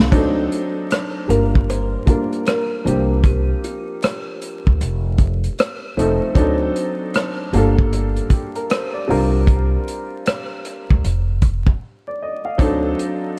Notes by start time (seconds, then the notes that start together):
Already playing: G3 A#3 D4 F4 A4
0.00 snare
0.11 D2 F#3 C4 D4 D#4 A4, kick, closed hi-hat
0.52 closed hi-hat
0.91 cross-stick, closed hi-hat
1.28 G1 G3 A#3 D4 F4 A#4, closed hi-hat
1.55 kick
1.70 C5, closed hi-hat
2.06 G3 A#3 D4 F4 A#4, kick, closed hi-hat
2.32 closed hi-hat
2.46 A#4, cross-stick, closed hi-hat
2.85 C2 F3 A#3 C4 D4 G4, closed hi-hat
3.24 G4, kick, closed hi-hat
3.64 F4, closed hi-hat
4.02 cross-stick, closed hi-hat
4.42 closed hi-hat
4.67 D2, kick
4.81 F1, closed hi-hat
5.18 kick, closed hi-hat
5.44 closed hi-hat
5.58 cross-stick, closed hi-hat
5.97 F1 F3 A3 C4 D#4 A4, closed hi-hat
6.35 D2 F#3 C4 D4 D#4 A4, kick, closed hi-hat
6.76 closed hi-hat
7.14 cross-stick, closed hi-hat
7.53 G1 G3 A#3 D4 F4 A4, closed hi-hat
7.78 kick
7.93 closed hi-hat
8.16 closed hi-hat
8.30 G4, kick, closed hi-hat
8.55 A#4, closed hi-hat
8.70 C5, cross-stick, closed hi-hat
8.94 D5
9.08 C2 G3 C4 D4 F4 A#4, open hi-hat
9.47 kick, closed hi-hat
9.88 closed hi-hat
10.26 cross-stick, closed hi-hat
10.65 closed hi-hat
10.90 D2, kick
11.04 F1, closed hi-hat
11.42 kick, closed hi-hat
11.67 kick
12.08 D5
12.23 D#5
12.45 F5
12.58 D2 F#3 C4 D4 D#4 A4, kick, closed hi-hat
12.99 closed hi-hat